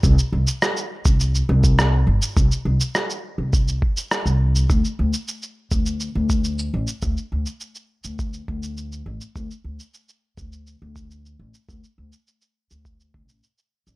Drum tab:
SH |xx-xxx-xxx-xx--x|xx-xxx--xx-xxx-x|xx-xxx-xxx-xxx-x|xx-xxx-xxx-xxx-x|
SD |----r-------r---|----r-------r---|----------------|----------------|
BD |o------o---o----|o-------o-o-----|o------o---o----|o-------o-o-----|

SH |xx-xxx-xxx-xxx-x|xx-xxx-xxx-xxx-x|
SD |----------------|----------------|
BD |o------o---o----|o-------o-o-----|